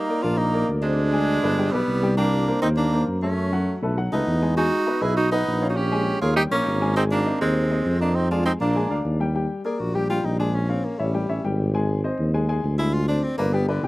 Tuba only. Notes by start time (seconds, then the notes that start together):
0.23 A#1
0.68 D2
1.43 G1
1.73 B1
1.88 C2
2.62 D#2
3.07 F#2
3.82 B1
4.12 C#2
4.27 E2
5.01 B1
5.46 A#1
6.21 D#2
6.51 A#1
6.66 G#1
7.41 D#2
7.85 F2
8.60 A#1
8.90 D2
9.05 D#2
9.79 A#1
10.24 A#1
10.99 A1
11.29 A1
11.44 G#1
12.19 D#2
12.64 D2
13.38 G1
13.83 C2